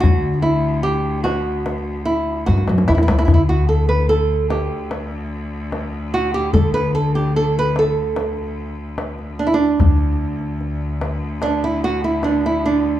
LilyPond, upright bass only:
\new Staff \with { instrumentName = "Upright bass" } { \clef bass \time 4/4 \tempo 4 = 74 d2 r4 g,16 fis,16 e,16 d,16 | d,2 r2 | d2 r2 | d,2 r2 | }